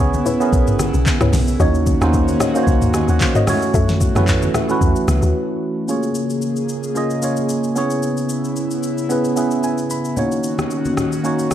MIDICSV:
0, 0, Header, 1, 6, 480
1, 0, Start_track
1, 0, Tempo, 535714
1, 1433, Time_signature, 4, 2, 24, 8
1, 10343, End_track
2, 0, Start_track
2, 0, Title_t, "Synth pluck"
2, 0, Program_c, 0, 84
2, 229, Note_on_c, 0, 64, 78
2, 232, Note_on_c, 0, 71, 74
2, 234, Note_on_c, 0, 73, 85
2, 367, Note_off_c, 0, 64, 0
2, 368, Note_off_c, 0, 71, 0
2, 369, Note_off_c, 0, 73, 0
2, 1081, Note_on_c, 0, 64, 81
2, 1084, Note_on_c, 0, 71, 74
2, 1086, Note_on_c, 0, 73, 90
2, 1196, Note_off_c, 0, 64, 0
2, 1197, Note_off_c, 0, 71, 0
2, 1198, Note_off_c, 0, 73, 0
2, 1431, Note_on_c, 0, 66, 94
2, 1433, Note_on_c, 0, 73, 85
2, 1435, Note_on_c, 0, 75, 98
2, 1877, Note_off_c, 0, 66, 0
2, 1878, Note_off_c, 0, 73, 0
2, 1879, Note_off_c, 0, 75, 0
2, 2150, Note_on_c, 0, 66, 78
2, 2153, Note_on_c, 0, 73, 73
2, 2155, Note_on_c, 0, 75, 88
2, 2287, Note_off_c, 0, 66, 0
2, 2289, Note_off_c, 0, 73, 0
2, 2290, Note_off_c, 0, 75, 0
2, 3003, Note_on_c, 0, 66, 82
2, 3006, Note_on_c, 0, 73, 75
2, 3009, Note_on_c, 0, 75, 89
2, 3116, Note_off_c, 0, 66, 0
2, 3118, Note_off_c, 0, 73, 0
2, 3120, Note_off_c, 0, 75, 0
2, 3350, Note_on_c, 0, 66, 90
2, 3353, Note_on_c, 0, 69, 85
2, 3356, Note_on_c, 0, 76, 103
2, 3797, Note_off_c, 0, 66, 0
2, 3798, Note_off_c, 0, 69, 0
2, 3799, Note_off_c, 0, 76, 0
2, 4071, Note_on_c, 0, 66, 75
2, 4074, Note_on_c, 0, 69, 71
2, 4077, Note_on_c, 0, 76, 86
2, 4208, Note_off_c, 0, 66, 0
2, 4209, Note_off_c, 0, 69, 0
2, 4210, Note_off_c, 0, 76, 0
2, 10343, End_track
3, 0, Start_track
3, 0, Title_t, "Tine electric piano"
3, 0, Program_c, 1, 4
3, 0, Control_c, 1, 64, 127
3, 0, Note_on_c, 1, 59, 90
3, 0, Note_on_c, 1, 61, 81
3, 0, Note_on_c, 1, 64, 85
3, 0, Note_on_c, 1, 68, 82
3, 0, Note_on_c, 1, 73, 96
3, 256, Note_off_c, 1, 59, 0
3, 259, Note_off_c, 1, 61, 0
3, 262, Note_off_c, 1, 64, 0
3, 264, Note_off_c, 1, 68, 0
3, 268, Note_off_c, 1, 73, 0
3, 359, Note_on_c, 1, 59, 90
3, 364, Note_on_c, 1, 61, 82
3, 370, Note_on_c, 1, 64, 81
3, 376, Note_on_c, 1, 68, 84
3, 382, Note_on_c, 1, 70, 96
3, 1125, Note_off_c, 1, 59, 0
3, 1128, Note_off_c, 1, 61, 0
3, 1130, Note_off_c, 1, 64, 0
3, 1133, Note_off_c, 1, 68, 0
3, 1136, Note_off_c, 1, 70, 0
3, 1428, Note_on_c, 1, 58, 82
3, 1434, Note_on_c, 1, 61, 77
3, 1438, Note_on_c, 1, 63, 76
3, 1444, Control_c, 1, 64, 0
3, 1444, Note_on_c, 1, 66, 76
3, 1451, Note_on_c, 1, 73, 94
3, 1622, Control_c, 1, 64, 127
3, 1723, Note_off_c, 1, 58, 0
3, 1726, Note_off_c, 1, 61, 0
3, 1728, Note_off_c, 1, 63, 0
3, 1731, Note_off_c, 1, 66, 0
3, 1734, Note_off_c, 1, 73, 0
3, 1799, Note_on_c, 1, 58, 88
3, 1805, Note_on_c, 1, 61, 84
3, 1811, Note_on_c, 1, 63, 81
3, 1817, Note_on_c, 1, 66, 81
3, 1823, Note_on_c, 1, 72, 99
3, 2176, Note_off_c, 1, 58, 0
3, 2179, Note_off_c, 1, 61, 0
3, 2182, Note_off_c, 1, 63, 0
3, 2185, Note_off_c, 1, 66, 0
3, 2188, Note_off_c, 1, 72, 0
3, 2280, Note_on_c, 1, 58, 88
3, 2286, Note_on_c, 1, 61, 81
3, 2290, Note_on_c, 1, 63, 80
3, 2297, Note_on_c, 1, 66, 82
3, 2303, Note_on_c, 1, 72, 81
3, 2345, Note_off_c, 1, 72, 0
3, 2360, Note_on_c, 1, 73, 96
3, 2430, Note_off_c, 1, 73, 0
3, 2641, Note_on_c, 1, 80, 66
3, 2646, Note_on_c, 1, 75, 56
3, 2762, Note_off_c, 1, 80, 0
3, 2765, Note_off_c, 1, 75, 0
3, 2774, Note_on_c, 1, 78, 77
3, 2780, Note_on_c, 1, 73, 69
3, 2872, Note_off_c, 1, 78, 0
3, 2875, Note_off_c, 1, 73, 0
3, 2881, Note_on_c, 1, 77, 75
3, 2886, Note_on_c, 1, 72, 63
3, 3002, Note_off_c, 1, 77, 0
3, 3005, Note_off_c, 1, 72, 0
3, 3012, Note_on_c, 1, 75, 64
3, 3018, Note_on_c, 1, 70, 56
3, 3045, Note_off_c, 1, 58, 0
3, 3048, Note_off_c, 1, 61, 0
3, 3051, Note_off_c, 1, 63, 0
3, 3054, Note_off_c, 1, 66, 0
3, 3108, Note_on_c, 1, 56, 74
3, 3114, Note_on_c, 1, 61, 85
3, 3121, Note_on_c, 1, 64, 86
3, 3125, Control_c, 1, 64, 0
3, 3126, Note_on_c, 1, 66, 82
3, 3132, Note_on_c, 1, 73, 99
3, 3166, Note_on_c, 1, 57, 94
3, 3174, Note_off_c, 1, 56, 0
3, 3237, Note_off_c, 1, 75, 0
3, 3239, Note_off_c, 1, 70, 0
3, 3304, Control_c, 1, 64, 127
3, 3593, Note_off_c, 1, 61, 0
3, 3597, Note_off_c, 1, 64, 0
3, 3599, Note_off_c, 1, 66, 0
3, 3602, Note_off_c, 1, 73, 0
3, 3619, Note_off_c, 1, 57, 0
3, 3720, Note_on_c, 1, 57, 92
3, 3727, Note_on_c, 1, 61, 82
3, 3732, Note_on_c, 1, 64, 83
3, 3738, Note_on_c, 1, 66, 80
3, 3744, Note_on_c, 1, 71, 97
3, 4097, Note_off_c, 1, 57, 0
3, 4100, Note_off_c, 1, 61, 0
3, 4102, Note_off_c, 1, 64, 0
3, 4105, Note_off_c, 1, 66, 0
3, 4109, Note_off_c, 1, 71, 0
3, 4201, Note_on_c, 1, 57, 87
3, 4206, Note_on_c, 1, 61, 81
3, 4212, Note_on_c, 1, 64, 80
3, 4218, Note_on_c, 1, 66, 82
3, 4224, Note_on_c, 1, 71, 102
3, 4966, Note_off_c, 1, 57, 0
3, 4969, Note_off_c, 1, 61, 0
3, 4971, Note_off_c, 1, 64, 0
3, 4974, Note_off_c, 1, 66, 0
3, 4978, Note_off_c, 1, 71, 0
3, 5268, Note_on_c, 1, 58, 75
3, 5274, Note_on_c, 1, 61, 70
3, 5279, Note_on_c, 1, 65, 70
3, 5282, Control_c, 1, 64, 0
3, 5284, Note_on_c, 1, 68, 70
3, 5291, Note_on_c, 1, 73, 85
3, 5467, Control_c, 1, 64, 127
3, 6043, Note_off_c, 1, 58, 0
3, 6046, Note_off_c, 1, 61, 0
3, 6049, Note_off_c, 1, 65, 0
3, 6051, Note_off_c, 1, 68, 0
3, 6055, Note_off_c, 1, 73, 0
3, 6227, Note_on_c, 1, 58, 81
3, 6232, Note_on_c, 1, 61, 72
3, 6238, Note_on_c, 1, 65, 75
3, 6244, Note_on_c, 1, 68, 77
3, 6249, Note_on_c, 1, 75, 93
3, 6426, Note_off_c, 1, 58, 0
3, 6429, Note_off_c, 1, 61, 0
3, 6432, Note_off_c, 1, 65, 0
3, 6435, Note_off_c, 1, 68, 0
3, 6438, Note_off_c, 1, 75, 0
3, 6467, Note_on_c, 1, 58, 70
3, 6472, Note_on_c, 1, 61, 66
3, 6478, Note_on_c, 1, 65, 66
3, 6484, Note_on_c, 1, 68, 67
3, 6490, Note_on_c, 1, 73, 79
3, 6943, Note_off_c, 1, 61, 0
3, 6948, Note_on_c, 1, 59, 86
3, 6950, Note_off_c, 1, 58, 0
3, 6954, Note_on_c, 1, 61, 79
3, 6955, Note_off_c, 1, 65, 0
3, 6955, Note_off_c, 1, 68, 0
3, 6960, Note_on_c, 1, 64, 77
3, 6961, Note_off_c, 1, 73, 0
3, 6962, Control_c, 1, 64, 0
3, 6966, Note_on_c, 1, 68, 78
3, 6971, Note_on_c, 1, 73, 97
3, 7147, Control_c, 1, 64, 127
3, 7723, Note_off_c, 1, 59, 0
3, 7726, Note_off_c, 1, 61, 0
3, 7729, Note_off_c, 1, 64, 0
3, 7732, Note_off_c, 1, 68, 0
3, 7735, Note_off_c, 1, 73, 0
3, 8146, Note_on_c, 1, 59, 82
3, 8153, Note_on_c, 1, 61, 73
3, 8159, Note_on_c, 1, 64, 74
3, 8164, Note_on_c, 1, 68, 76
3, 8170, Note_on_c, 1, 71, 92
3, 8346, Note_off_c, 1, 59, 0
3, 8349, Note_off_c, 1, 61, 0
3, 8352, Note_off_c, 1, 64, 0
3, 8355, Note_off_c, 1, 68, 0
3, 8358, Note_off_c, 1, 71, 0
3, 8385, Note_on_c, 1, 59, 76
3, 8391, Note_on_c, 1, 61, 67
3, 8397, Note_on_c, 1, 64, 68
3, 8397, Note_on_c, 1, 76, 68
3, 8403, Note_on_c, 1, 68, 69
3, 8408, Note_on_c, 1, 71, 78
3, 8618, Note_off_c, 1, 76, 0
3, 8636, Note_on_c, 1, 80, 75
3, 8858, Note_off_c, 1, 80, 0
3, 8878, Note_on_c, 1, 83, 70
3, 8974, Note_off_c, 1, 59, 0
3, 8977, Note_off_c, 1, 61, 0
3, 8980, Note_off_c, 1, 64, 0
3, 8983, Note_off_c, 1, 68, 0
3, 8986, Note_off_c, 1, 71, 0
3, 9099, Note_off_c, 1, 83, 0
3, 9106, Note_on_c, 1, 58, 78
3, 9111, Note_on_c, 1, 61, 73
3, 9117, Note_on_c, 1, 63, 73
3, 9123, Note_on_c, 1, 66, 73
3, 9124, Control_c, 1, 64, 0
3, 9128, Note_on_c, 1, 73, 88
3, 9268, Control_c, 1, 64, 127
3, 9882, Note_off_c, 1, 58, 0
3, 9884, Note_off_c, 1, 61, 0
3, 9888, Note_off_c, 1, 63, 0
3, 9890, Note_off_c, 1, 66, 0
3, 9893, Note_off_c, 1, 73, 0
3, 10066, Note_on_c, 1, 58, 83
3, 10072, Note_on_c, 1, 61, 78
3, 10078, Note_on_c, 1, 63, 77
3, 10083, Note_on_c, 1, 66, 75
3, 10089, Note_on_c, 1, 73, 92
3, 10266, Note_off_c, 1, 58, 0
3, 10269, Note_off_c, 1, 61, 0
3, 10272, Note_off_c, 1, 63, 0
3, 10275, Note_off_c, 1, 66, 0
3, 10277, Note_off_c, 1, 73, 0
3, 10343, End_track
4, 0, Start_track
4, 0, Title_t, "Analog synth pad"
4, 0, Program_c, 2, 89
4, 0, Note_on_c, 2, 49, 84
4, 0, Note_on_c, 2, 59, 76
4, 0, Note_on_c, 2, 64, 88
4, 1397, Note_off_c, 2, 49, 0
4, 1411, Note_off_c, 2, 59, 0
4, 1411, Note_off_c, 2, 64, 0
4, 1433, Note_on_c, 2, 66, 92
4, 1434, Note_on_c, 2, 61, 76
4, 1435, Note_on_c, 2, 51, 77
4, 3096, Note_off_c, 2, 61, 0
4, 3096, Note_off_c, 2, 66, 0
4, 3097, Note_off_c, 2, 51, 0
4, 3112, Note_on_c, 2, 66, 92
4, 3113, Note_on_c, 2, 52, 78
4, 3113, Note_on_c, 2, 57, 72
4, 5251, Note_off_c, 2, 52, 0
4, 5251, Note_off_c, 2, 57, 0
4, 5251, Note_off_c, 2, 66, 0
4, 5270, Note_on_c, 2, 58, 74
4, 5271, Note_on_c, 2, 68, 85
4, 5272, Note_on_c, 2, 49, 76
4, 6934, Note_off_c, 2, 58, 0
4, 6935, Note_off_c, 2, 68, 0
4, 6950, Note_on_c, 2, 59, 67
4, 6950, Note_on_c, 2, 64, 86
4, 9076, Note_off_c, 2, 49, 0
4, 9089, Note_off_c, 2, 59, 0
4, 9089, Note_off_c, 2, 64, 0
4, 9112, Note_on_c, 2, 51, 76
4, 9112, Note_on_c, 2, 61, 71
4, 9112, Note_on_c, 2, 66, 87
4, 10343, Note_off_c, 2, 51, 0
4, 10343, Note_off_c, 2, 61, 0
4, 10343, Note_off_c, 2, 66, 0
4, 10343, End_track
5, 0, Start_track
5, 0, Title_t, "Log drum bass"
5, 0, Program_c, 3, 39
5, 0, Note_on_c, 3, 37, 101
5, 185, Note_off_c, 3, 37, 0
5, 471, Note_on_c, 3, 35, 95
5, 604, Note_on_c, 3, 32, 92
5, 618, Note_off_c, 3, 35, 0
5, 812, Note_off_c, 3, 32, 0
5, 845, Note_on_c, 3, 35, 96
5, 938, Note_off_c, 3, 35, 0
5, 1085, Note_on_c, 3, 37, 86
5, 1178, Note_off_c, 3, 37, 0
5, 1192, Note_on_c, 3, 35, 95
5, 1399, Note_off_c, 3, 35, 0
5, 1432, Note_on_c, 3, 39, 115
5, 1753, Note_off_c, 3, 39, 0
5, 1805, Note_on_c, 3, 39, 100
5, 2105, Note_off_c, 3, 39, 0
5, 2392, Note_on_c, 3, 37, 86
5, 2524, Note_on_c, 3, 39, 96
5, 2538, Note_off_c, 3, 37, 0
5, 2731, Note_off_c, 3, 39, 0
5, 2765, Note_on_c, 3, 39, 89
5, 2858, Note_off_c, 3, 39, 0
5, 3352, Note_on_c, 3, 42, 108
5, 3673, Note_off_c, 3, 42, 0
5, 3724, Note_on_c, 3, 42, 108
5, 4025, Note_off_c, 3, 42, 0
5, 4312, Note_on_c, 3, 40, 90
5, 4426, Note_off_c, 3, 40, 0
5, 4551, Note_on_c, 3, 37, 103
5, 4665, Note_off_c, 3, 37, 0
5, 4684, Note_on_c, 3, 39, 93
5, 4777, Note_off_c, 3, 39, 0
5, 10343, End_track
6, 0, Start_track
6, 0, Title_t, "Drums"
6, 121, Note_on_c, 9, 82, 52
6, 128, Note_on_c, 9, 63, 75
6, 211, Note_off_c, 9, 82, 0
6, 217, Note_off_c, 9, 63, 0
6, 232, Note_on_c, 9, 82, 80
6, 235, Note_on_c, 9, 64, 75
6, 322, Note_off_c, 9, 82, 0
6, 325, Note_off_c, 9, 64, 0
6, 365, Note_on_c, 9, 82, 54
6, 454, Note_off_c, 9, 82, 0
6, 472, Note_on_c, 9, 36, 123
6, 473, Note_on_c, 9, 82, 73
6, 561, Note_off_c, 9, 36, 0
6, 563, Note_off_c, 9, 82, 0
6, 604, Note_on_c, 9, 82, 56
6, 607, Note_on_c, 9, 45, 71
6, 693, Note_off_c, 9, 82, 0
6, 696, Note_off_c, 9, 45, 0
6, 711, Note_on_c, 9, 37, 91
6, 711, Note_on_c, 9, 82, 105
6, 712, Note_on_c, 9, 63, 80
6, 801, Note_off_c, 9, 37, 0
6, 801, Note_off_c, 9, 82, 0
6, 802, Note_off_c, 9, 63, 0
6, 841, Note_on_c, 9, 82, 62
6, 930, Note_off_c, 9, 82, 0
6, 952, Note_on_c, 9, 63, 78
6, 953, Note_on_c, 9, 39, 102
6, 954, Note_on_c, 9, 36, 107
6, 954, Note_on_c, 9, 82, 80
6, 1042, Note_off_c, 9, 39, 0
6, 1042, Note_off_c, 9, 63, 0
6, 1043, Note_off_c, 9, 36, 0
6, 1043, Note_off_c, 9, 82, 0
6, 1081, Note_on_c, 9, 37, 112
6, 1083, Note_on_c, 9, 45, 102
6, 1083, Note_on_c, 9, 82, 49
6, 1171, Note_off_c, 9, 37, 0
6, 1172, Note_off_c, 9, 45, 0
6, 1173, Note_off_c, 9, 82, 0
6, 1190, Note_on_c, 9, 38, 66
6, 1193, Note_on_c, 9, 46, 76
6, 1193, Note_on_c, 9, 82, 92
6, 1195, Note_on_c, 9, 63, 77
6, 1195, Note_on_c, 9, 64, 79
6, 1280, Note_off_c, 9, 38, 0
6, 1283, Note_off_c, 9, 46, 0
6, 1283, Note_off_c, 9, 82, 0
6, 1284, Note_off_c, 9, 63, 0
6, 1284, Note_off_c, 9, 64, 0
6, 1322, Note_on_c, 9, 82, 56
6, 1412, Note_off_c, 9, 82, 0
6, 1432, Note_on_c, 9, 64, 71
6, 1432, Note_on_c, 9, 82, 70
6, 1433, Note_on_c, 9, 36, 116
6, 1521, Note_off_c, 9, 64, 0
6, 1522, Note_off_c, 9, 36, 0
6, 1522, Note_off_c, 9, 82, 0
6, 1564, Note_on_c, 9, 82, 49
6, 1653, Note_off_c, 9, 82, 0
6, 1670, Note_on_c, 9, 36, 100
6, 1670, Note_on_c, 9, 82, 92
6, 1672, Note_on_c, 9, 63, 51
6, 1759, Note_off_c, 9, 82, 0
6, 1760, Note_off_c, 9, 36, 0
6, 1761, Note_off_c, 9, 63, 0
6, 1804, Note_on_c, 9, 63, 73
6, 1805, Note_on_c, 9, 82, 53
6, 1807, Note_on_c, 9, 37, 95
6, 1894, Note_off_c, 9, 63, 0
6, 1894, Note_off_c, 9, 82, 0
6, 1896, Note_off_c, 9, 37, 0
6, 1911, Note_on_c, 9, 82, 70
6, 1915, Note_on_c, 9, 36, 93
6, 2001, Note_off_c, 9, 82, 0
6, 2004, Note_off_c, 9, 36, 0
6, 2042, Note_on_c, 9, 82, 52
6, 2046, Note_on_c, 9, 63, 73
6, 2132, Note_off_c, 9, 82, 0
6, 2135, Note_off_c, 9, 63, 0
6, 2153, Note_on_c, 9, 37, 108
6, 2153, Note_on_c, 9, 82, 85
6, 2154, Note_on_c, 9, 64, 71
6, 2242, Note_off_c, 9, 37, 0
6, 2243, Note_off_c, 9, 64, 0
6, 2243, Note_off_c, 9, 82, 0
6, 2286, Note_on_c, 9, 82, 58
6, 2376, Note_off_c, 9, 82, 0
6, 2392, Note_on_c, 9, 36, 124
6, 2394, Note_on_c, 9, 82, 70
6, 2482, Note_off_c, 9, 36, 0
6, 2484, Note_off_c, 9, 82, 0
6, 2524, Note_on_c, 9, 82, 57
6, 2527, Note_on_c, 9, 45, 69
6, 2613, Note_off_c, 9, 82, 0
6, 2616, Note_off_c, 9, 45, 0
6, 2632, Note_on_c, 9, 37, 92
6, 2632, Note_on_c, 9, 63, 78
6, 2632, Note_on_c, 9, 82, 106
6, 2721, Note_off_c, 9, 37, 0
6, 2721, Note_off_c, 9, 63, 0
6, 2722, Note_off_c, 9, 82, 0
6, 2761, Note_on_c, 9, 82, 62
6, 2851, Note_off_c, 9, 82, 0
6, 2870, Note_on_c, 9, 63, 78
6, 2873, Note_on_c, 9, 39, 99
6, 2874, Note_on_c, 9, 36, 101
6, 2874, Note_on_c, 9, 82, 79
6, 2960, Note_off_c, 9, 63, 0
6, 2963, Note_off_c, 9, 39, 0
6, 2964, Note_off_c, 9, 36, 0
6, 2964, Note_off_c, 9, 82, 0
6, 3004, Note_on_c, 9, 45, 101
6, 3004, Note_on_c, 9, 82, 50
6, 3093, Note_off_c, 9, 45, 0
6, 3094, Note_off_c, 9, 82, 0
6, 3111, Note_on_c, 9, 37, 95
6, 3113, Note_on_c, 9, 63, 74
6, 3113, Note_on_c, 9, 64, 76
6, 3114, Note_on_c, 9, 46, 75
6, 3114, Note_on_c, 9, 82, 95
6, 3201, Note_off_c, 9, 37, 0
6, 3202, Note_off_c, 9, 63, 0
6, 3202, Note_off_c, 9, 64, 0
6, 3204, Note_off_c, 9, 46, 0
6, 3204, Note_off_c, 9, 82, 0
6, 3243, Note_on_c, 9, 82, 58
6, 3333, Note_off_c, 9, 82, 0
6, 3349, Note_on_c, 9, 64, 74
6, 3352, Note_on_c, 9, 36, 111
6, 3352, Note_on_c, 9, 82, 71
6, 3438, Note_off_c, 9, 64, 0
6, 3442, Note_off_c, 9, 36, 0
6, 3442, Note_off_c, 9, 82, 0
6, 3484, Note_on_c, 9, 82, 50
6, 3486, Note_on_c, 9, 38, 75
6, 3573, Note_off_c, 9, 82, 0
6, 3575, Note_off_c, 9, 38, 0
6, 3590, Note_on_c, 9, 36, 102
6, 3590, Note_on_c, 9, 63, 52
6, 3590, Note_on_c, 9, 82, 93
6, 3679, Note_off_c, 9, 36, 0
6, 3679, Note_off_c, 9, 63, 0
6, 3680, Note_off_c, 9, 82, 0
6, 3722, Note_on_c, 9, 63, 71
6, 3726, Note_on_c, 9, 82, 54
6, 3728, Note_on_c, 9, 37, 95
6, 3811, Note_off_c, 9, 63, 0
6, 3816, Note_off_c, 9, 82, 0
6, 3818, Note_off_c, 9, 37, 0
6, 3832, Note_on_c, 9, 39, 87
6, 3832, Note_on_c, 9, 82, 68
6, 3835, Note_on_c, 9, 36, 84
6, 3921, Note_off_c, 9, 39, 0
6, 3922, Note_off_c, 9, 82, 0
6, 3924, Note_off_c, 9, 36, 0
6, 3963, Note_on_c, 9, 82, 53
6, 3966, Note_on_c, 9, 63, 74
6, 4053, Note_off_c, 9, 82, 0
6, 4056, Note_off_c, 9, 63, 0
6, 4071, Note_on_c, 9, 37, 103
6, 4072, Note_on_c, 9, 82, 84
6, 4073, Note_on_c, 9, 64, 78
6, 4161, Note_off_c, 9, 37, 0
6, 4162, Note_off_c, 9, 82, 0
6, 4163, Note_off_c, 9, 64, 0
6, 4205, Note_on_c, 9, 82, 55
6, 4295, Note_off_c, 9, 82, 0
6, 4312, Note_on_c, 9, 36, 123
6, 4314, Note_on_c, 9, 82, 72
6, 4401, Note_off_c, 9, 36, 0
6, 4404, Note_off_c, 9, 82, 0
6, 4443, Note_on_c, 9, 82, 55
6, 4533, Note_off_c, 9, 82, 0
6, 4552, Note_on_c, 9, 37, 94
6, 4552, Note_on_c, 9, 63, 76
6, 4552, Note_on_c, 9, 82, 106
6, 4641, Note_off_c, 9, 63, 0
6, 4642, Note_off_c, 9, 37, 0
6, 4642, Note_off_c, 9, 82, 0
6, 4680, Note_on_c, 9, 82, 63
6, 4769, Note_off_c, 9, 82, 0
6, 5272, Note_on_c, 9, 82, 70
6, 5361, Note_off_c, 9, 82, 0
6, 5402, Note_on_c, 9, 82, 49
6, 5491, Note_off_c, 9, 82, 0
6, 5508, Note_on_c, 9, 82, 84
6, 5597, Note_off_c, 9, 82, 0
6, 5644, Note_on_c, 9, 82, 47
6, 5733, Note_off_c, 9, 82, 0
6, 5750, Note_on_c, 9, 82, 61
6, 5840, Note_off_c, 9, 82, 0
6, 5880, Note_on_c, 9, 82, 48
6, 5970, Note_off_c, 9, 82, 0
6, 5992, Note_on_c, 9, 82, 74
6, 6081, Note_off_c, 9, 82, 0
6, 6124, Note_on_c, 9, 82, 53
6, 6213, Note_off_c, 9, 82, 0
6, 6233, Note_on_c, 9, 82, 67
6, 6323, Note_off_c, 9, 82, 0
6, 6363, Note_on_c, 9, 82, 53
6, 6453, Note_off_c, 9, 82, 0
6, 6471, Note_on_c, 9, 82, 95
6, 6561, Note_off_c, 9, 82, 0
6, 6600, Note_on_c, 9, 82, 58
6, 6689, Note_off_c, 9, 82, 0
6, 6712, Note_on_c, 9, 82, 73
6, 6802, Note_off_c, 9, 82, 0
6, 6843, Note_on_c, 9, 82, 47
6, 6932, Note_off_c, 9, 82, 0
6, 6952, Note_on_c, 9, 82, 84
6, 7042, Note_off_c, 9, 82, 0
6, 7082, Note_on_c, 9, 82, 54
6, 7171, Note_off_c, 9, 82, 0
6, 7192, Note_on_c, 9, 82, 65
6, 7281, Note_off_c, 9, 82, 0
6, 7322, Note_on_c, 9, 82, 47
6, 7411, Note_off_c, 9, 82, 0
6, 7429, Note_on_c, 9, 82, 88
6, 7519, Note_off_c, 9, 82, 0
6, 7565, Note_on_c, 9, 82, 46
6, 7655, Note_off_c, 9, 82, 0
6, 7672, Note_on_c, 9, 82, 66
6, 7762, Note_off_c, 9, 82, 0
6, 7802, Note_on_c, 9, 82, 49
6, 7892, Note_off_c, 9, 82, 0
6, 7912, Note_on_c, 9, 82, 77
6, 8002, Note_off_c, 9, 82, 0
6, 8045, Note_on_c, 9, 82, 50
6, 8134, Note_off_c, 9, 82, 0
6, 8153, Note_on_c, 9, 82, 66
6, 8243, Note_off_c, 9, 82, 0
6, 8283, Note_on_c, 9, 82, 53
6, 8372, Note_off_c, 9, 82, 0
6, 8391, Note_on_c, 9, 82, 96
6, 8481, Note_off_c, 9, 82, 0
6, 8520, Note_on_c, 9, 82, 57
6, 8609, Note_off_c, 9, 82, 0
6, 8632, Note_on_c, 9, 82, 76
6, 8722, Note_off_c, 9, 82, 0
6, 8762, Note_on_c, 9, 82, 45
6, 8852, Note_off_c, 9, 82, 0
6, 8872, Note_on_c, 9, 82, 82
6, 8962, Note_off_c, 9, 82, 0
6, 9002, Note_on_c, 9, 82, 54
6, 9091, Note_off_c, 9, 82, 0
6, 9109, Note_on_c, 9, 64, 67
6, 9111, Note_on_c, 9, 82, 65
6, 9199, Note_off_c, 9, 64, 0
6, 9201, Note_off_c, 9, 82, 0
6, 9243, Note_on_c, 9, 82, 49
6, 9332, Note_off_c, 9, 82, 0
6, 9349, Note_on_c, 9, 82, 87
6, 9439, Note_off_c, 9, 82, 0
6, 9484, Note_on_c, 9, 63, 67
6, 9485, Note_on_c, 9, 82, 49
6, 9487, Note_on_c, 9, 37, 86
6, 9573, Note_off_c, 9, 63, 0
6, 9575, Note_off_c, 9, 82, 0
6, 9577, Note_off_c, 9, 37, 0
6, 9592, Note_on_c, 9, 82, 63
6, 9681, Note_off_c, 9, 82, 0
6, 9723, Note_on_c, 9, 82, 50
6, 9726, Note_on_c, 9, 63, 67
6, 9812, Note_off_c, 9, 82, 0
6, 9816, Note_off_c, 9, 63, 0
6, 9832, Note_on_c, 9, 37, 95
6, 9833, Note_on_c, 9, 82, 76
6, 9835, Note_on_c, 9, 64, 69
6, 9922, Note_off_c, 9, 37, 0
6, 9922, Note_off_c, 9, 82, 0
6, 9924, Note_off_c, 9, 64, 0
6, 9965, Note_on_c, 9, 82, 53
6, 10055, Note_off_c, 9, 82, 0
6, 10074, Note_on_c, 9, 82, 69
6, 10164, Note_off_c, 9, 82, 0
6, 10204, Note_on_c, 9, 82, 53
6, 10293, Note_off_c, 9, 82, 0
6, 10312, Note_on_c, 9, 37, 89
6, 10312, Note_on_c, 9, 63, 69
6, 10312, Note_on_c, 9, 82, 96
6, 10343, Note_off_c, 9, 37, 0
6, 10343, Note_off_c, 9, 63, 0
6, 10343, Note_off_c, 9, 82, 0
6, 10343, End_track
0, 0, End_of_file